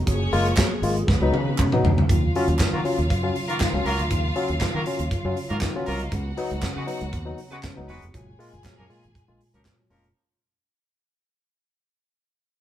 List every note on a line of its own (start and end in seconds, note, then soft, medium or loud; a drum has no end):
0.07 0.27 F#1 medium
0.07 1.08 F3 medium
0.07 0.22 F#3 medium
0.07 1.07 A#3 medium
0.07 0.82 C#4 loud
0.07 1.07 G#4 medium
0.07 0.82 C#5 loud
0.07 kick loud
0.07 closed hi-hat medium
0.33 0.52 F#1 loud
0.33 0.46 G#3 medium
0.33 0.46 A#3 medium
0.33 0.46 F4 loud
0.33 open hi-hat medium
0.45 0.51 A#3 soft
0.45 0.51 F4 soft
0.45 closed hi-hat soft
0.57 0.72 F#3 medium
0.57 kick loud
0.57 snare loud
0.57 clap loud
0.57 clap medium
0.57 closed hi-hat medium
0.82 1.02 G#1 medium
0.82 0.97 G#3 medium
0.82 0.95 A#3 medium
0.82 0.95 F4 medium
0.82 open hi-hat medium
0.96 1.01 A#3 soft
0.96 1.01 F4 soft
0.96 closed hi-hat soft
1.07 1.18 C#2 loud
1.07 2.08 D#3 medium
1.07 1.82 B3 medium
1.07 2.08 B3 medium
1.07 2.07 F#4 medium
1.07 1.82 B4 loud
1.07 kick loud
1.07 snare medium
1.21 1.30 C#2 loud
1.21 1.34 F#3 medium
1.21 1.34 B3 medium
1.21 1.34 D#4 medium
1.32 1.52 C#3 loud
1.32 high tom medium
1.48 1.59 C#3 medium
1.58 1.73 C#3 medium
1.58 kick loud
1.58 clap loud
1.58 mid tom medium
1.72 1.85 F#3 medium
1.72 1.84 B3 medium
1.72 1.84 D#4 medium
1.72 mid tom medium
1.83 2.03 D2 medium
1.83 1.90 B3 soft
1.83 1.90 D#4 soft
1.83 floor tom loud
1.98 floor tom loud
2.08 2.29 D#2 medium
2.08 8.11 C#3 medium
2.08 2.24 D#3 medium
2.08 6.09 F#3 medium
2.08 5.70 F4 loud
2.08 6.09 F4 medium
2.08 5.70 F5 loud
2.08 kick loud
2.08 closed hi-hat medium
2.35 2.49 F#3 medium
2.35 2.47 C#4 medium
2.35 2.47 F4 loud
2.35 open hi-hat medium
2.48 2.57 D#2 loud
2.48 2.53 C#4 soft
2.48 2.53 F4 soft
2.48 closed hi-hat soft
2.59 2.73 D#3 medium
2.59 muted fingered electric bass stroke soft
2.59 kick loud
2.59 snare loud
2.59 clap loud
2.59 closed hi-hat medium
2.73 2.82 D#3 loud
2.73 2.80 F#3 loud
2.73 2.81 A#3 medium
2.73 2.81 F4 medium
2.73 2.81 A#4 medium
2.84 2.98 F#3 medium
2.84 2.97 C#4 medium
2.84 2.97 F4 medium
2.84 open hi-hat medium
2.98 3.07 D#2 loud
2.98 3.03 C#4 soft
2.98 3.03 F4 soft
2.98 closed hi-hat soft
3.10 3.29 F#2 medium
3.10 kick loud
3.10 closed hi-hat medium
3.23 3.36 F#3 medium
3.23 3.35 C#4 medium
3.23 3.36 F4 medium
3.36 open hi-hat medium
3.48 3.59 D#3 medium
3.48 3.56 F#3 medium
3.48 3.56 A#3 medium
3.48 3.56 F4 medium
3.48 3.56 A#4 loud
3.48 closed hi-hat medium
3.60 3.74 D#3 medium
3.60 kick loud
3.60 snare loud
3.60 clap loud
3.60 clap medium
3.60 closed hi-hat medium
3.73 3.82 C#2 medium
3.73 3.86 F#3 medium
3.73 3.84 C#4 medium
3.73 3.84 F4 medium
3.85 3.96 C#2 medium
3.85 4.01 F#3 loud
3.85 4.02 A#3 medium
3.85 3.91 C#4 soft
3.85 3.91 F4 soft
3.85 4.02 F4 medium
3.85 4.02 A#4 loud
3.85 open hi-hat medium
3.98 4.08 D2 medium
3.98 closed hi-hat medium
4.11 4.30 D#2 loud
4.11 4.25 D#3 medium
4.11 kick loud
4.11 closed hi-hat medium
4.36 4.50 F#3 medium
4.36 4.49 C#4 medium
4.36 4.49 F4 loud
4.36 open hi-hat medium
4.48 4.58 D#2 medium
4.48 4.55 C#4 soft
4.48 4.54 F4 soft
4.48 closed hi-hat soft
4.61 4.75 D#3 medium
4.61 kick loud
4.61 snare loud
4.61 clap medium
4.61 closed hi-hat medium
4.74 4.83 D#3 medium
4.74 4.82 F#3 loud
4.74 4.82 A#3 loud
4.74 4.82 F4 medium
4.74 4.82 A#4 loud
4.86 5.00 F#3 medium
4.86 5.00 C#4 medium
4.86 4.99 F4 medium
4.86 open hi-hat medium
4.99 5.09 D#2 medium
4.99 5.05 C#4 soft
4.99 5.05 F4 medium
4.99 closed hi-hat medium
5.11 kick loud
5.11 closed hi-hat medium
5.25 5.34 F#2 loud
5.25 5.37 F#3 medium
5.25 5.37 C#4 medium
5.25 5.38 F4 medium
5.37 open hi-hat medium
5.50 5.59 G#2 loud
5.50 5.62 D#3 medium
5.50 5.57 F#3 medium
5.50 5.57 A#3 loud
5.50 5.57 F4 medium
5.50 5.57 A#4 loud
5.50 closed hi-hat soft
5.61 5.76 D#3 medium
5.61 kick loud
5.61 snare loud
5.61 clap medium
5.61 closed hi-hat medium
5.76 5.88 F#3 medium
5.76 5.87 B3 medium
5.76 5.86 C#4 medium
5.76 5.86 F4 medium
5.76 5.87 B4 medium
5.86 6.07 C2 medium
5.86 6.03 F#3 medium
5.86 6.03 A#3 medium
5.86 5.95 C#4 medium
5.86 5.93 C#4 soft
5.86 6.03 F4 loud
5.86 5.92 F4 soft
5.86 6.03 A#4 loud
5.86 5.95 C#5 medium
5.86 open hi-hat medium
5.94 6.03 D#4 medium
5.94 6.03 D#5 medium
5.99 6.11 F4 medium
5.99 6.11 F5 loud
5.99 closed hi-hat soft
6.11 6.31 C#2 loud
6.11 6.26 C#3 medium
6.11 8.12 B3 medium
6.11 7.85 F#4 loud
6.11 8.12 F#4 medium
6.11 7.85 F#5 loud
6.11 kick loud
6.11 closed hi-hat medium
6.37 6.51 F#3 loud
6.37 6.50 B3 medium
6.37 6.50 D#4 loud
6.37 open hi-hat medium
6.50 6.60 C#2 loud
6.50 6.56 B3 soft
6.50 6.56 D#4 soft
6.50 closed hi-hat soft
6.62 6.76 C#3 medium
6.62 kick loud
6.62 snare loud
6.62 clap loud
6.62 clap medium
6.62 closed hi-hat medium
6.76 6.85 C#3 loud
6.76 6.84 G#3 medium
6.76 6.84 B3 medium
6.76 6.84 F#4 medium
6.76 6.84 B4 medium
6.86 7.01 F#3 medium
6.86 6.99 B3 medium
6.86 6.99 D#4 medium
6.86 open hi-hat medium
7.00 7.13 C#2 loud
7.00 7.06 B3 soft
7.00 7.05 D#4 soft
7.00 closed hi-hat medium
7.13 7.33 D#2 loud
7.13 kick loud
7.13 closed hi-hat medium
7.25 7.38 F#3 medium
7.25 7.38 B3 medium
7.25 7.39 D#4 medium
7.38 open hi-hat medium
7.50 7.62 C#3 medium
7.50 7.59 G#3 loud
7.50 7.59 B3 medium
7.50 7.59 F#4 medium
7.50 7.59 B4 loud
7.50 closed hi-hat soft
7.63 7.77 C#3 medium
7.63 kick loud
7.63 snare loud
7.63 clap medium
7.63 closed hi-hat medium
7.76 7.86 C#2 medium
7.76 7.89 F#3 medium
7.76 7.87 B3 medium
7.76 7.87 D#4 medium
7.88 7.99 E1 loud
7.88 8.05 G#3 medium
7.88 7.94 B3 soft
7.88 8.05 B3 loud
7.88 7.94 D#4 soft
7.88 8.05 F#4 medium
7.88 8.05 B4 loud
7.88 open hi-hat medium
8.02 8.11 F1 medium
8.02 closed hi-hat soft
8.14 8.33 F#1 medium
8.14 10.14 A#2 medium
8.14 8.28 F#3 medium
8.14 10.14 G#3 medium
8.14 10.14 F4 medium
8.14 9.87 G#4 loud
8.14 9.87 G#5 loud
8.14 kick loud
8.14 closed hi-hat medium
8.39 8.53 G#3 loud
8.39 8.51 A#3 medium
8.39 8.52 F4 loud
8.39 open hi-hat medium
8.53 8.62 F#1 loud
8.53 8.57 A#3 soft
8.53 8.57 F4 soft
8.53 closed hi-hat soft
8.64 8.78 F#3 medium
8.64 kick loud
8.64 snare loud
8.64 clap loud
8.64 clap medium
8.64 closed hi-hat medium
8.78 8.87 F#2 medium
8.78 8.85 F3 medium
8.78 8.85 A#3 medium
8.78 8.85 C#4 medium
8.78 8.85 A#4 loud
8.90 9.03 G#3 medium
8.90 9.02 A#3 medium
8.90 9.02 F4 medium
8.90 open hi-hat medium
9.03 9.13 G#1 medium
9.03 9.08 A#3 soft
9.03 9.08 F4 soft
9.03 closed hi-hat medium
9.15 kick loud
9.15 closed hi-hat medium
9.28 9.38 A#1 medium
9.28 9.40 G#3 medium
9.28 9.40 A#3 medium
9.28 9.41 F4 medium
9.41 open hi-hat medium
9.54 9.63 C#2 medium
9.54 9.61 F3 medium
9.54 9.66 F#3 medium
9.54 9.61 A#3 medium
9.54 9.61 C#4 medium
9.54 9.61 A#4 loud
9.54 closed hi-hat soft
9.65 9.71 A#3 soft
9.65 9.71 F4 soft
9.65 kick loud
9.65 snare loud
9.65 clap medium
9.65 clap loud
9.65 closed hi-hat medium
9.79 9.91 F#3 medium
9.90 10.10 F1 medium
9.90 10.07 F3 medium
9.90 10.04 G#3 medium
9.90 10.07 A#3 medium
9.90 10.05 A#3 medium
9.90 10.07 C#4 loud
9.90 10.05 F4 medium
9.90 10.07 A#4 medium
9.90 open hi-hat medium
10.04 closed hi-hat soft